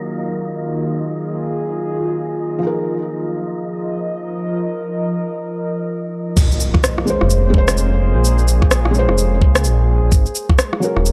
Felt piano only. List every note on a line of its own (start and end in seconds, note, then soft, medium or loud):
0.00 2.58 F#3 medium
0.00 2.59 C#4 medium
0.00 2.60 D#4 medium
0.00 2.61 F4 medium
0.00 2.62 G#4 medium
2.59 6.33 F3 medium
2.63 6.35 D#4 medium
2.63 6.37 A#4 medium
7.06 7.48 G#3 medium
7.06 7.52 C#4 medium
7.10 7.53 C5 medium
7.50 8.89 G#3 loud
7.50 8.92 C#4 medium
7.58 8.94 C5 loud
8.91 10.09 G#3 loud
8.95 10.11 C#4 medium
8.99 10.13 C5 loud
10.80 11.12 F#3 medium
10.80 11.12 C#4 medium
10.84 11.12 A#4 medium